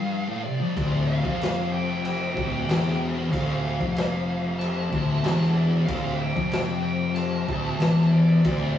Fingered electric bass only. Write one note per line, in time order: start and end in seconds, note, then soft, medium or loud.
0.76 1.21 D1 loud
1.25 2.33 F1 medium
2.37 2.66 D1 loud
2.68 3.28 E1 medium
3.33 3.77 D1 loud
3.81 4.89 F1 medium
4.92 5.22 D1 loud
5.25 5.85 E1 loud
5.89 6.34 D1 loud
6.37 7.45 F1 loud
7.49 7.79 D1 loud
7.81 8.41 E1 medium
8.45 8.78 D1 loud